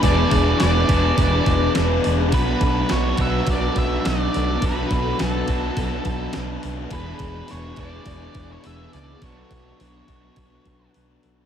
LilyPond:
<<
  \new Staff \with { instrumentName = "Lead electric guitar" } { \time 4/4 \key b \dorian \tempo 4 = 105 d''4 d''2 r4 | b'4 cis''8 e''8 d''8 e''8 d''4 | b'4 a'2 r4 | b'4 cis''8 d''4~ d''16 cis''16 e''8 d''8 |
cis''2. r4 | }
  \new Staff \with { instrumentName = "Twelve-string acoustic guitar" } { \time 4/4 \key b \dorian gis'4 b'4 gis'8 b'4 gis'8 | a'4 b'4 a'8 b'4 a'8 | a'4 b'4 a'8 b'4 a'8 | gis'4 b'4 gis'8 b'4 gis'8 |
a'4 b'4 a'8 b'4 a'8 | }
  \new Staff \with { instrumentName = "Overdriven electric guitar" } { \time 4/4 \key b \dorian <e b d' gis' b'>4 <b d' gis' b'>8 <d' gis' b'>8 <e b d' gis' b'>4 <b d' gis' b'>4 | <b, fis b d' fis' b'>4 <b d' fis' b'>8 <b d' fis' b'>8 <b, fis b d' fis' b'>4 <b d' fis' b'>4 | <b, fis b d' fis' b'>4 <b d' fis' b'>8 <b d' fis' b'>8 <b, fis b d' fis' b'>4 <b d' fis' b'>4 | <e b d' gis'>4 <e b d' gis'>8 <b d' gis'>8 <e b d' gis'>4 <e b d' gis'>4 |
<b, fis b d' fis'>4 <fis b d' fis'>8 <b d' fis'>8 <b, fis b d' fis'>4 <fis b d' fis'>4 | }
  \new Staff \with { instrumentName = "Overdriven electric guitar" } { \time 4/4 \key b \dorian <e, b, e b d' gis'>4. <e, b, e b d' gis'>2~ <e, b, e b d' gis'>8 | <b, fis b d' fis'>4. <b, fis b d' fis'>2~ <b, fis b d' fis'>8 | <b, fis b d' fis'>4. <b, fis b d' fis'>2~ <b, fis b d' fis'>8 | <e, b, e b d' gis'>4. <e, b, e b d' gis'>2~ <e, b, e b d' gis'>8 |
<b, fis b d' fis'>4. <b, fis b d' fis'>2~ <b, fis b d' fis'>8 | }
  \new Staff \with { instrumentName = "Fingered electric bass" } { \clef bass \time 4/4 \key b \dorian e,,8 e,,8 e,,8 e,,8 e,,8 e,,8 e,,8 e,,8 | b,,8 b,,8 b,,8 b,,8 b,,8 b,,8 b,,8 b,,8 | b,,8 b,,8 b,,8 b,,8 b,,8 b,,8 b,,8 b,,8 | e,,8 e,,8 e,,8 e,,8 e,,8 e,,8 e,,8 cis,8 |
b,,8 b,,8 b,,8 b,,8 b,,8 b,,8 b,,8 b,,8 | }
  \new DrumStaff \with { instrumentName = "Drums" } \drummode { \time 4/4 <hho bd>8 <hho bd sn>8 <hho sn>8 <hho bd>8 <hho bd>8 <hho bd>8 <hho sn>8 hho8 | <hho bd>8 <hho bd>8 <hho sn>8 <hho bd>8 <hho bd>8 <hho bd>8 <hho sn>8 hho8 | <hho bd>8 <hho bd>8 <hho sn>8 <hho bd>8 <hho bd>8 <hho bd>8 <hho sn>8 hho8 | <hho bd>8 <hho bd>8 hho8 <hho bd>8 <hho bd>8 <hho bd>8 hho8 hho8 |
<hho bd>8 <hho bd>8 hho8 <hho bd>8 <hho bd>8 <hho bd>8 hho8 hho8 | }
>>